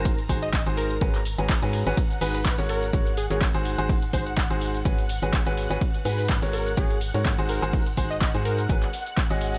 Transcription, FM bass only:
X:1
M:4/4
L:1/16
Q:"Swing 16ths" 1/4=125
K:G#m
V:1 name="FM bass" clef=bass
G,,,2 G,,,3 G,,,3 G,,,3 G,,,2 G,,2 G,,, | z2 G,,,3 G,,,3 G,,,3 G,,,2 G,,,2 G,,,- | G,,,2 G,,,3 G,,,3 G,,,3 G,,,2 G,,,2 G,,, | z2 G,,3 G,,,3 G,,,3 G,,2 G,,,2 G,,,- |
G,,,2 G,,,3 G,,3 G,,, z4 G,,,3 |]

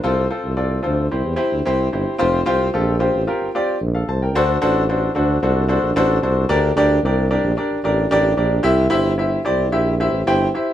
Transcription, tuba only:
X:1
M:4/4
L:1/16
Q:1/4=112
K:F
V:1 name="Tuba" clef=bass
C,,2 z C,,3 D,,2 C,, E,, z D,, C,,2 G,,, z | F,,,2 C,,2 B,,,3 A,,, z G,,, z2 B,,,2 C,,2 | D,,2 A,,,4 D,,2 C,,3 B,,, A,,,2 C,,2 | D,,2 D,,2 C,,3 B,,, z A,,, A,,,2 A,,,2 B,,,2 |
C,,2 G,,,4 C,,2 B,,,3 A,,, G,,,2 z2 |]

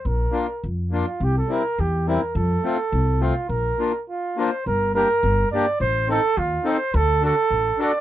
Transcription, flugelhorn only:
X:1
M:2/4
L:1/16
Q:1/4=105
K:Bb
V:1 name="Flugelhorn"
B4 z2 F2 | G A B2 G2 B2 | A6 F2 | B4 F2 c2 |
[K:Gm] B2 B4 d2 | c2 A2 F2 c2 | A2 A4 d2 |]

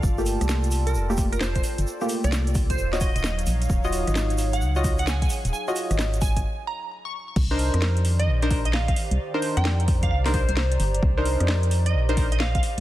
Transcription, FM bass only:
X:1
M:4/4
L:1/16
Q:"Swing 16ths" 1/4=131
K:Cm
V:1 name="FM bass" clef=bass
G,,,3 C,,4- C,, F,,,6 z G,,, | z3 C,,4- C,, E,,,3 E,,,3 B,,,2 | E,,,3 A,,,4- A,,, _D,,6 z E,,, | z3 A,,,4- A,,, z8 |
C,,3 F,,4- F,, B,,,6 z C,, | z3 F,,4- F,, C,,3 C,,3 G,,,2 | C,,3 F,,4- F,, B,,,6 z2 |]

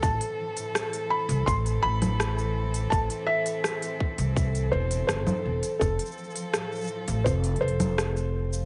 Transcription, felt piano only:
X:1
M:4/4
L:1/8
Q:1/4=83
K:Am
V:1 name="Felt piano"
a3 b c' b3 | a e4 c c2 | A4 c c3 |]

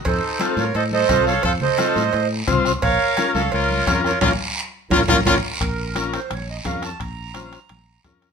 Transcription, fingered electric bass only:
X:1
M:4/4
L:1/8
Q:1/4=173
K:Bbm
V:1 name="Fingered electric bass" clef=bass
F,, z2 =A,, A,,2 C,,2 | F,, z2 =A,, A,,2 C,,2 | B,,, z2 D,, D,,2 F,,2 | B,,, z3 B,,, B,,, B,,, z |
B,,,4 B,,,2 F,,2 | B,,,4 B,,,2 F,,2 |]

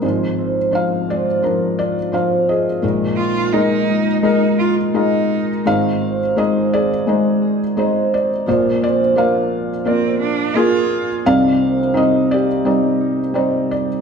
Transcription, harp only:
X:1
M:4/4
L:1/16
Q:1/4=86
K:Ablyd
V:1 name="Harp"
A,2 C4 [A,CF]4 F2 C2 F2 | E,2 E4 [A,EF]4 F2 E2 F2 | E,2 C2 [A,CA]4 A,2 A2 [A,CA]4 | F,2 C D [B,DF]4 B,2 F2 [B,DF]4 |
G,2 C D [G,E]4 G,2 E2 [G,E]4 |]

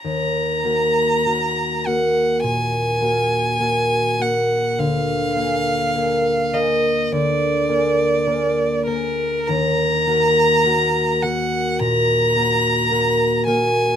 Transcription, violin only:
X:1
M:4/4
L:1/8
Q:1/4=52
K:Ebm
V:1 name="Violin"
b3 g a3 g | f3 e =d3 B | b3 g b3 a |]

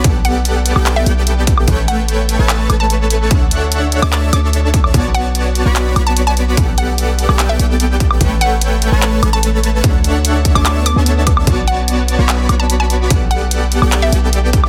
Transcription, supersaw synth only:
X:1
M:4/4
L:1/16
Q:1/4=147
K:D
V:1 name="Supersaw synth"
[B,GAdf]6- [B,GAdf] [B,GAdg]3 [B,GAdg]6 | [A,ABcg]6- [A,ABcg] [A,ABca]3 [A,ABca]6 | [DAcef]6- [DAcef] [DAcea]3 [DAcea]6 | [B,Fcda]6- [B,Fcda] [B,Fcdb]3 [B,Fcdb]6 |
[B,GAdf]6- [B,GAdf] [B,GAdg]3 [B,GAdg]6 | [A,ABcg]6- [A,ABcg] [A,ABca]3 [A,ABca]6 | [DAcef]6- [DAcef] [DAcea]3 z [DAcea]4- [DAcea] | [B,Fcda]6- [B,Fcda] [B,Fcdb]3 [B,Fcdb]6 |
[B,GAdf]6- [B,GAdf] [B,GAdg]3 [B,GAdg]6 |]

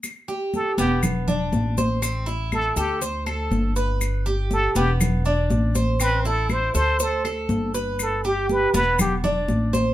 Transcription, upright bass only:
X:1
M:4/4
L:1/8
Q:1/4=121
K:G
V:1 name="Upright bass" clef=bass
z3 E,,,3 A,,,2- | A,,,3 D,,3 G,,,2- | G,,,3 E,,,3 A,,,2- | A,,,3 D,,3 G,,,2- |
G,,,3 E,,,3 A,,,2 |]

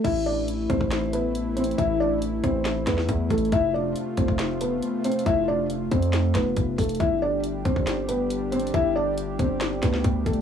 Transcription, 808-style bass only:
X:1
M:4/4
L:1/16
Q:1/4=138
K:Am
V:1 name="808-style bass" clef=bass
A,,,6 A,,, A,,,8- A,,, | A,,,6 A,,,4 E,,2 E,,2 A,,,2 | F,,,4 z2 F,,, F,,,4- F,,, z4 | F,,,6 F,,4 F,,,2 F,,,2 F,,,2 |
G,,,6 G,,, G,,,8- G,,, | G,,,6 G,,,4 D,,2 D,,2 G,,,2 |]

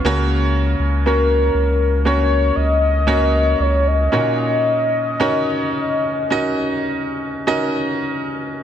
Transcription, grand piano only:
X:1
M:4/4
L:1/8
Q:1/4=56
K:Ebm
V:1 name="Grand piano"
[B,DGBd]2 [B,DGBd]2 [B,DGBd]2 [B,DGBd]2 | [DEGBd]2 [DEGBd]2 [DEGBe]2 [DEGBe]2 |]
V:2 name="Grand piano" clef=bass
D,3 z4 z | B,,3 z4 z |]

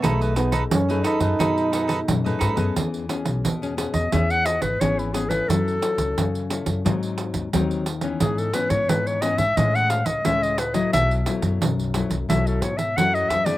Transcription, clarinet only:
X:1
M:4/4
L:1/16
Q:1/4=88
K:Bmix
V:1 name="Clarinet"
z16 | z6 z d e f d B c E G B | A6 z8 z2 | G A B c B c d e d f =f d e d B d |
e2 z6 e A c e f d e =d |]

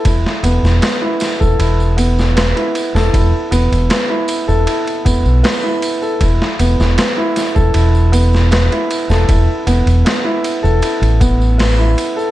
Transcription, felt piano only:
X:1
M:4/4
L:1/16
Q:1/4=78
K:Clyd
V:1 name="Felt piano"
E2 B,2 B E2 A E2 B,2 B E2 A | E2 B,2 B E2 A E2 B,2 B E2 A | E2 B,2 B E2 A E2 B,2 B E2 A | E2 B,2 B E2 A E2 B,2 B E2 A |]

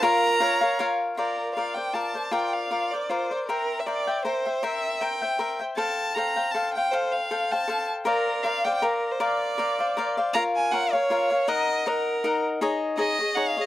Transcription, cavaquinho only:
X:1
M:3/4
L:1/8
Q:"Swing" 1/4=157
K:Bbm
V:1 name="Cavaquinho"
[FBdf]2 [FBdf] [Bdf] [FBdf]2 | [K:Bb] [FBcd]2 [FBcd] [Bcd] [FBcd] [Bcd] | [FBcd]2 [FBcd] [Bcd] [FBcd] [Bcd] | [Bc=eg]2 [Bceg] [ceg] [Bceg] [ceg] |
[Bc=eg]2 [Bceg] [ceg] [Bceg] [ceg] | [Acfg]2 [Acfg] [cfg] [Acfg] [cfg] | [Acfg]2 [Acfg] [cfg] [Acfg]2 | [Bcdf]2 [Bcdf] [cdf] [Bcdf]2 |
[Bcdf]2 [Bcdf] [cdf] [Bcdf] [cdf] | [K:Bbm] [FBdf]2 [FBdf] [Bdf] [FBdf] [Bdf] | [EBeg]2 [EBeg]2 [EBeg]2 | [EAde]2 [EAde] [Ade] [EAde] [Ade] |]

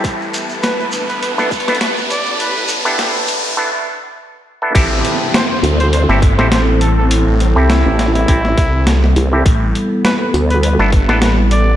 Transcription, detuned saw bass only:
X:1
M:4/4
L:1/16
Q:"Swing 16ths" 1/4=102
K:Am
V:1 name="Detuned saw bass" clef=bass
A,,,2 z4 D,,3 G,,,2 A,,,4- A,,,- | A,,, A,,,2 A,,,2 A,,,3 z8 | A,,,2 z6 z G,,,2 A,,,4- A,,,- | A,,, A,,,2 C,,2 z4 z C,,4 z2 |
A,,,2 z6 z G,,,2 A,,,4- A,,, |]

